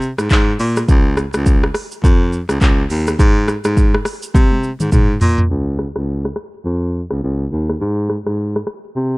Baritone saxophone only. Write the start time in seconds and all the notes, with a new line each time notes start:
0.19 G#2
0.31 G#2
0.60 A#2
0.89 C#2
1.34 C#2
2.04 F2
2.49 C#2
2.61 C#2
2.90 D#2
3.19 G#2
3.65 G#2
4.35 C3
4.80 G#2
4.92 G#2
5.21 A#2
5.50 C#2
5.96 C#2
6.65 F2
7.11 C#2
7.23 C#2
7.52 D#2
7.81 G#2
8.26 G#2
8.96 C3